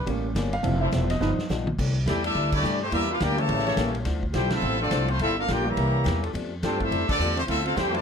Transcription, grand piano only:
0, 0, Header, 1, 2, 480
1, 0, Start_track
1, 0, Key_signature, 0, "major"
1, 0, Tempo, 285036
1, 1078, Time_signature, 4, 2, 24, 8
1, 13496, End_track
2, 0, Start_track
2, 0, Title_t, "Grand piano"
2, 0, Program_c, 0, 0
2, 113, Note_on_c, 0, 55, 56
2, 119, Note_on_c, 0, 58, 53
2, 140, Note_on_c, 0, 61, 68
2, 463, Note_off_c, 0, 55, 0
2, 466, Note_off_c, 0, 58, 0
2, 477, Note_off_c, 0, 61, 0
2, 900, Note_on_c, 0, 77, 102
2, 1058, Note_on_c, 0, 53, 61
2, 1068, Note_on_c, 0, 60, 54
2, 1077, Note_on_c, 0, 64, 71
2, 1340, Note_off_c, 0, 77, 0
2, 1366, Note_on_c, 0, 76, 85
2, 1813, Note_off_c, 0, 76, 0
2, 1859, Note_on_c, 0, 75, 88
2, 1979, Note_off_c, 0, 53, 0
2, 1984, Note_off_c, 0, 60, 0
2, 1989, Note_off_c, 0, 64, 0
2, 2039, Note_on_c, 0, 53, 56
2, 2047, Note_on_c, 0, 59, 53
2, 2057, Note_on_c, 0, 63, 61
2, 2386, Note_off_c, 0, 53, 0
2, 2390, Note_off_c, 0, 59, 0
2, 2395, Note_off_c, 0, 63, 0
2, 2476, Note_off_c, 0, 75, 0
2, 13496, End_track
0, 0, End_of_file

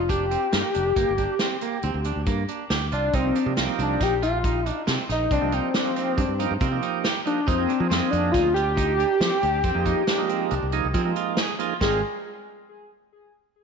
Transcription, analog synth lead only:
0, 0, Header, 1, 2, 480
1, 0, Start_track
1, 0, Tempo, 434153
1, 1066, Time_signature, 5, 2, 24, 8
1, 15078, End_track
2, 0, Start_track
2, 0, Title_t, "Analog synth lead"
2, 0, Program_c, 0, 81
2, 111, Note_on_c, 0, 67, 110
2, 2948, Note_off_c, 0, 67, 0
2, 3240, Note_on_c, 0, 62, 97
2, 3478, Note_on_c, 0, 60, 101
2, 3494, Note_off_c, 0, 62, 0
2, 3954, Note_off_c, 0, 60, 0
2, 4222, Note_on_c, 0, 62, 99
2, 4450, Note_on_c, 0, 67, 119
2, 4467, Note_off_c, 0, 62, 0
2, 4670, Note_off_c, 0, 67, 0
2, 4677, Note_on_c, 0, 65, 99
2, 5186, Note_off_c, 0, 65, 0
2, 5186, Note_on_c, 0, 63, 99
2, 5349, Note_off_c, 0, 63, 0
2, 5658, Note_on_c, 0, 63, 101
2, 5881, Note_on_c, 0, 62, 104
2, 5898, Note_off_c, 0, 63, 0
2, 6122, Note_on_c, 0, 60, 108
2, 6139, Note_off_c, 0, 62, 0
2, 7555, Note_off_c, 0, 60, 0
2, 8033, Note_on_c, 0, 62, 92
2, 8259, Note_on_c, 0, 60, 98
2, 8276, Note_off_c, 0, 62, 0
2, 8732, Note_off_c, 0, 60, 0
2, 8739, Note_on_c, 0, 60, 92
2, 8956, Note_off_c, 0, 60, 0
2, 8963, Note_on_c, 0, 62, 97
2, 9196, Note_on_c, 0, 65, 114
2, 9213, Note_off_c, 0, 62, 0
2, 9437, Note_off_c, 0, 65, 0
2, 9444, Note_on_c, 0, 67, 114
2, 12529, Note_off_c, 0, 67, 0
2, 13068, Note_on_c, 0, 68, 91
2, 13290, Note_off_c, 0, 68, 0
2, 15078, End_track
0, 0, End_of_file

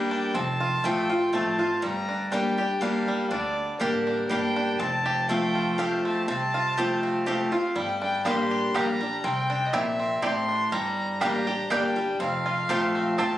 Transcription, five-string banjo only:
0, 0, Header, 1, 2, 480
1, 0, Start_track
1, 0, Key_signature, -2, "minor"
1, 0, Tempo, 493827
1, 338, Time_signature, 3, 2, 24, 8
1, 13003, End_track
2, 0, Start_track
2, 0, Title_t, "Five-string banjo"
2, 0, Program_c, 0, 105
2, 0, Note_on_c, 0, 55, 66
2, 108, Note_on_c, 0, 62, 54
2, 334, Note_on_c, 0, 60, 59
2, 337, Note_off_c, 0, 55, 0
2, 337, Note_off_c, 0, 62, 0
2, 587, Note_on_c, 0, 65, 57
2, 816, Note_on_c, 0, 57, 57
2, 1019, Note_off_c, 0, 60, 0
2, 1056, Note_off_c, 0, 65, 0
2, 1068, Note_on_c, 0, 65, 52
2, 1283, Note_off_c, 0, 57, 0
2, 1295, Note_on_c, 0, 57, 63
2, 1536, Note_off_c, 0, 65, 0
2, 1548, Note_on_c, 0, 65, 56
2, 1773, Note_off_c, 0, 57, 0
2, 1777, Note_off_c, 0, 65, 0
2, 1777, Note_on_c, 0, 55, 70
2, 2028, Note_on_c, 0, 62, 52
2, 2244, Note_off_c, 0, 62, 0
2, 2255, Note_on_c, 0, 62, 65
2, 2511, Note_on_c, 0, 67, 56
2, 2728, Note_off_c, 0, 62, 0
2, 2740, Note_on_c, 0, 62, 66
2, 2991, Note_off_c, 0, 55, 0
2, 2995, Note_on_c, 0, 55, 58
2, 3174, Note_off_c, 0, 67, 0
2, 3210, Note_off_c, 0, 62, 0
2, 3221, Note_on_c, 0, 62, 64
2, 3656, Note_off_c, 0, 55, 0
2, 3702, Note_on_c, 0, 67, 59
2, 3903, Note_off_c, 0, 62, 0
2, 3954, Note_on_c, 0, 62, 56
2, 4171, Note_off_c, 0, 67, 0
2, 4182, Note_on_c, 0, 67, 57
2, 4424, Note_off_c, 0, 62, 0
2, 4436, Note_on_c, 0, 62, 59
2, 4661, Note_off_c, 0, 67, 0
2, 4662, Note_off_c, 0, 62, 0
2, 4666, Note_on_c, 0, 60, 62
2, 4915, Note_on_c, 0, 67, 63
2, 5146, Note_on_c, 0, 57, 57
2, 5397, Note_on_c, 0, 65, 55
2, 5576, Note_off_c, 0, 67, 0
2, 5627, Note_on_c, 0, 67, 68
2, 5825, Note_off_c, 0, 57, 0
2, 5878, Note_off_c, 0, 60, 0
2, 5882, Note_on_c, 0, 60, 55
2, 6057, Note_off_c, 0, 65, 0
2, 6093, Note_off_c, 0, 60, 0
2, 6105, Note_on_c, 0, 60, 59
2, 6306, Note_off_c, 0, 67, 0
2, 6359, Note_on_c, 0, 65, 60
2, 6588, Note_on_c, 0, 67, 59
2, 6784, Note_off_c, 0, 60, 0
2, 6835, Note_on_c, 0, 60, 57
2, 7018, Note_off_c, 0, 65, 0
2, 7053, Note_off_c, 0, 67, 0
2, 7064, Note_on_c, 0, 67, 57
2, 7312, Note_on_c, 0, 65, 57
2, 7495, Note_off_c, 0, 60, 0
2, 7540, Note_off_c, 0, 65, 0
2, 7542, Note_off_c, 0, 67, 0
2, 7542, Note_on_c, 0, 55, 74
2, 7792, Note_on_c, 0, 62, 62
2, 8018, Note_off_c, 0, 62, 0
2, 8018, Note_on_c, 0, 62, 54
2, 8272, Note_on_c, 0, 67, 58
2, 8496, Note_off_c, 0, 62, 0
2, 8500, Note_on_c, 0, 62, 55
2, 8752, Note_off_c, 0, 55, 0
2, 8756, Note_on_c, 0, 55, 54
2, 8979, Note_off_c, 0, 62, 0
2, 8983, Note_on_c, 0, 60, 65
2, 9233, Note_on_c, 0, 62, 61
2, 9459, Note_off_c, 0, 67, 0
2, 9462, Note_on_c, 0, 67, 56
2, 9663, Note_off_c, 0, 60, 0
2, 9715, Note_on_c, 0, 60, 57
2, 9894, Note_off_c, 0, 62, 0
2, 9929, Note_off_c, 0, 67, 0
2, 9941, Note_on_c, 0, 67, 60
2, 10117, Note_off_c, 0, 55, 0
2, 10194, Note_on_c, 0, 62, 50
2, 10375, Note_off_c, 0, 60, 0
2, 10420, Note_off_c, 0, 62, 0
2, 10420, Note_off_c, 0, 67, 0
2, 10421, Note_on_c, 0, 55, 77
2, 10899, Note_on_c, 0, 62, 63
2, 11102, Note_off_c, 0, 55, 0
2, 11150, Note_on_c, 0, 67, 57
2, 11365, Note_off_c, 0, 62, 0
2, 11377, Note_on_c, 0, 62, 60
2, 11631, Note_on_c, 0, 55, 55
2, 11812, Note_off_c, 0, 67, 0
2, 11854, Note_off_c, 0, 62, 0
2, 11858, Note_off_c, 0, 55, 0
2, 11858, Note_on_c, 0, 60, 69
2, 12109, Note_on_c, 0, 65, 60
2, 12336, Note_on_c, 0, 67, 56
2, 12540, Note_off_c, 0, 60, 0
2, 12589, Note_on_c, 0, 60, 59
2, 12771, Note_off_c, 0, 65, 0
2, 12803, Note_off_c, 0, 67, 0
2, 12814, Note_on_c, 0, 67, 58
2, 13003, Note_off_c, 0, 60, 0
2, 13003, Note_off_c, 0, 67, 0
2, 13003, End_track
0, 0, End_of_file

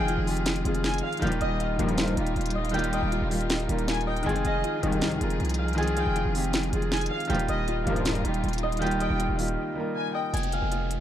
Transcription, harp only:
0, 0, Header, 1, 2, 480
1, 0, Start_track
1, 0, Key_signature, -4, "minor"
1, 0, Tempo, 379747
1, 1546, Time_signature, 4, 2, 24, 8
1, 13907, End_track
2, 0, Start_track
2, 0, Title_t, "Harp"
2, 0, Program_c, 0, 46
2, 0, Note_on_c, 0, 77, 84
2, 0, Note_on_c, 0, 80, 101
2, 106, Note_on_c, 0, 65, 77
2, 1296, Note_off_c, 0, 77, 0
2, 1301, Note_on_c, 0, 77, 81
2, 1520, Note_off_c, 0, 80, 0
2, 1542, Note_on_c, 0, 79, 102
2, 1787, Note_on_c, 0, 75, 81
2, 2024, Note_off_c, 0, 65, 0
2, 2029, Note_on_c, 0, 65, 86
2, 3221, Note_off_c, 0, 75, 0
2, 3226, Note_on_c, 0, 75, 91
2, 3405, Note_off_c, 0, 77, 0
2, 3454, Note_off_c, 0, 79, 0
2, 3459, Note_on_c, 0, 79, 108
2, 3705, Note_off_c, 0, 75, 0
2, 3710, Note_on_c, 0, 75, 85
2, 3938, Note_off_c, 0, 65, 0
2, 3943, Note_on_c, 0, 65, 80
2, 5138, Note_off_c, 0, 75, 0
2, 5143, Note_on_c, 0, 75, 81
2, 5388, Note_on_c, 0, 80, 107
2, 5464, Note_off_c, 0, 79, 0
2, 5633, Note_on_c, 0, 77, 76
2, 5859, Note_off_c, 0, 65, 0
2, 5864, Note_on_c, 0, 65, 75
2, 7057, Note_off_c, 0, 77, 0
2, 7062, Note_on_c, 0, 77, 81
2, 7284, Note_off_c, 0, 80, 0
2, 7303, Note_on_c, 0, 80, 104
2, 7397, Note_off_c, 0, 75, 0
2, 7540, Note_off_c, 0, 77, 0
2, 7545, Note_on_c, 0, 77, 88
2, 7779, Note_off_c, 0, 65, 0
2, 7784, Note_on_c, 0, 65, 78
2, 8977, Note_off_c, 0, 77, 0
2, 8982, Note_on_c, 0, 77, 86
2, 9199, Note_off_c, 0, 80, 0
2, 9222, Note_on_c, 0, 79, 101
2, 9467, Note_on_c, 0, 75, 83
2, 9704, Note_off_c, 0, 65, 0
2, 9709, Note_on_c, 0, 65, 84
2, 10903, Note_off_c, 0, 75, 0
2, 10908, Note_on_c, 0, 75, 91
2, 11086, Note_off_c, 0, 77, 0
2, 11136, Note_off_c, 0, 79, 0
2, 11141, Note_on_c, 0, 79, 108
2, 11386, Note_off_c, 0, 75, 0
2, 11391, Note_on_c, 0, 75, 86
2, 11618, Note_off_c, 0, 65, 0
2, 11623, Note_on_c, 0, 65, 79
2, 12818, Note_off_c, 0, 75, 0
2, 12823, Note_on_c, 0, 75, 80
2, 13066, Note_on_c, 0, 80, 106
2, 13142, Note_off_c, 0, 79, 0
2, 13312, Note_on_c, 0, 77, 72
2, 13538, Note_off_c, 0, 65, 0
2, 13543, Note_on_c, 0, 65, 72
2, 13907, Note_off_c, 0, 65, 0
2, 13907, Note_off_c, 0, 75, 0
2, 13907, Note_off_c, 0, 77, 0
2, 13907, Note_off_c, 0, 80, 0
2, 13907, End_track
0, 0, End_of_file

